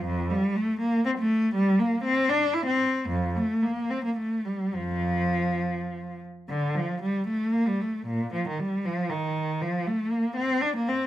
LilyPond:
\new Staff \with { instrumentName = "Cello" } { \time 3/4 \key f \major \tempo 4 = 116 << { f,8 g8 a8 bes8 c'16 a8. | g8 bes8 c'8 d'8 e'16 c'8. | f,8 a8 bes8 c'16 bes16 a8 g8 | f2~ f8 r8 |
\key bes \major d8 f8 g8 a8 bes16 g16 a8 | bes,8 f16 ees16 g8 f8 ees4 | f8 a8 bes8 c'8 d'16 bes16 c'8 | } \\ { r2. | r2. | r2. | f,4. r4. |
r2. | r2. | r2. | } >> }